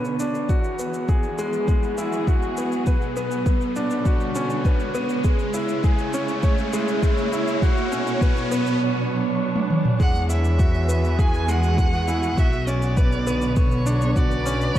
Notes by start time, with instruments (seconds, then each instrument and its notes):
Already playing: double bass section B1, string section B2 D3 B3 C#5, grand piano B3 C#4 D4 F#4 B4, riser
0.05 shaker
0.19 grand piano D4, shaker
0.35 shaker
0.49 double bass section E2, string section E3, grand piano F#4, kick, shaker
0.64 shaker
0.79 grand piano B3, shaker
0.94 shaker
1.08 grand piano G#4, kick, shaker
1.23 shaker
1.38 grand piano G#3, shaker
1.53 string section F#4 G#4, shaker
1.68 grand piano G#3, kick, shaker
1.83 shaker
1.98 grand piano E4, shaker
2.13 shaker
2.27 grand piano F#4, kick, shaker
2.42 shaker
2.57 grand piano B3, shaker
2.72 shaker
2.87 double bass section B1, string section B2, grand piano B4, kick, shaker
3.02 shaker
3.16 grand piano B3, shaker
3.31 shaker
3.46 grand piano B3, kick, shaker
3.61 shaker
3.76 grand piano D4, shaker
3.91 string section D3, shaker
3.95 string section C#5
4.05 grand piano F#4, kick, shaker
4.20 shaker
4.35 grand piano C#4, shaker
4.50 shaker
4.65 grand piano B4, kick, shaker
4.80 shaker
4.94 grand piano B3, shaker
5.09 shaker
5.24 double bass section C#2, string section C#3, grand piano G#3, kick, shaker
5.39 shaker
5.54 grand piano E4, shaker
5.69 shaker
5.74 string section G#3
5.84 grand piano G#4, kick, shaker
5.96 string section E4, shaker
6.13 grand piano C#4, shaker
6.28 shaker
6.43 grand piano C#5, kick, shaker
6.58 shaker
6.73 grand piano G#3, shaker
6.88 shaker
7.03 grand piano G#3, kick, shaker
7.18 shaker
7.32 grand piano E4, shaker
7.48 shaker
7.62 double bass section B1, string section B2, grand piano F#4, kick, shaker
7.77 shaker
7.92 grand piano C#4, shaker
8.07 shaker
8.21 grand piano B4, kick, shaker
8.37 string section F#3, shaker
8.52 grand piano B3, shaker
8.65 string section D4, shaker
9.56 high tom
9.70 mid tom
9.85 mid tom
10.00 double bass section E2, string section E3, grand piano G#3, violin F#5, kick, shaker
10.15 shaker
10.30 grand piano E4, violin E5, shaker
10.44 shaker
10.59 grand piano F#4, kick, shaker
10.64 string section F#4
10.70 string section B3
10.74 shaker
10.89 grand piano B3, shaker
11.04 string section G#4, shaker
11.19 grand piano G#4, violin G#5, kick, shaker
11.34 shaker
11.48 grand piano G#3, violin F#5, shaker
11.63 shaker
11.78 grand piano G#3, kick, shaker
11.93 shaker
12.08 grand piano E4, shaker
12.23 shaker
12.37 double bass section B1, string section B2, grand piano F#4, violin E5, kick, shaker
12.53 shaker
12.67 grand piano C#4, violin D5, shaker
12.82 shaker
12.93 string section D3, grand piano B4, kick, shaker
13.10 string section B4, shaker
13.27 grand piano B3, shaker
13.42 shaker
13.56 grand piano B3, violin C#5, kick, shaker
13.71 shaker
13.86 grand piano D4, shaker
14.02 shaker
14.16 grand piano F#4, violin D5, kick, shaker
14.31 shaker
14.46 grand piano C#4, shaker
14.61 shaker
14.75 double bass section C#2, string section C#3, grand piano C#5, kick, shaker